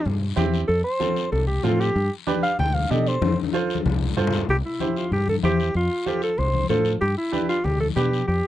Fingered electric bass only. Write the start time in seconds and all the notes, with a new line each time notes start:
0.06 G2
0.37 E2
0.69 F2
1.32 C2
1.64 A2
1.96 G2
2.60 D2
2.91 B2
3.21 F2
3.86 C2
4.17 G2
4.49 C2
5.11 G2
5.43 E2
5.75 F2
6.39 C2
6.70 A2
7.02 G2
7.65 D2
7.96 B2
8.28 F2